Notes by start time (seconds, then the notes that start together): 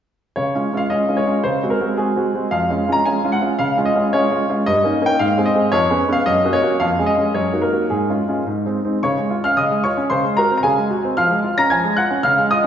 0.36 C#3 C#5
0.55 G#3 C#4 F4
0.73 G#3 C#4 F4
0.77 F5
0.90 G#3 C#4 F4 D#5
1.08 G#3 C#4 F4
1.17 C#5
1.27 G#3 C#4 F4
1.44 C#3 C5
1.63 G#3 C4 F#4
1.70 A#4
1.80 G#3 C4 F#4
1.97 G#3 C4 F#4 G#4
2.16 G#3 C4 F#4
2.35 G#3 C4 F#4
2.51 F2 F5
2.70 G#3 C#4 F4
2.88 G#3 C#4 F4
2.92 A#5
3.05 G#3 C#4 F4 G#5
3.24 G#3 C#4 F4
3.32 F#5
3.42 G#3 C#4 F4
3.59 C#3 F5
3.77 G#3 C#4 F4
3.85 D#5
3.95 G#3 C#4 F4
4.13 G#3 C#4 F4 C#5
4.31 G#3 C#4 F4
4.49 G#3 C#4 F4
4.66 G2 D#5
4.84 A#3 C#4 D#4
5.02 A#3 C#4 D#4
5.06 G5
5.19 G#2 F5
5.38 G#3 C4 G#4
5.46 D#5
5.54 G#3 C4 G#4
5.72 F2 C#5
5.90 B3 C#4 G#4
6.08 B3 C#4 G#4
6.13 F5
6.26 F#2 D#5
6.45 A#3 C#4 F#4
6.53 C#5
6.62 A#3 C#4 F#4
6.80 F2 F5
6.99 G#3 C#4 G#4
7.06 D#5
7.17 G#3 C#4 G#4
7.34 F#2 C#5
7.53 A#3 D#4 F#4
7.62 A#4
7.72 A#3 D#4 F#4
7.90 G#2 G#4
8.09 G#3 C#4 F4
8.28 G#3 C#4 F4
8.47 G#2
8.66 G#3 C4 D#4
8.84 G#3 C4 D#4
9.03 C#3 C#5 C#6
9.17 G#3
9.30 F4
9.44 C#4 F5 F6
9.57 C#3 D#5 D#6
9.71 G#3
9.84 F4 C#5 C#6
9.97 C#4
10.10 C#3 C5 C6
10.24 G#3
10.37 F#4 A#4 A#5
10.51 C4
10.57 A#5
10.63 C#3 G#4 G#5
10.78 G#3
10.91 F#4
11.04 C4
11.17 F3 F5 F6
11.30 G#3
11.44 F4
11.58 C#4 A#5 A#6
11.70 F3 G#5 G#6
11.84 G#3
11.97 F4 F#5 F#6
12.11 C#4
12.23 C#3 F5 F6
12.38 G#3
12.51 F4 D#5 D#6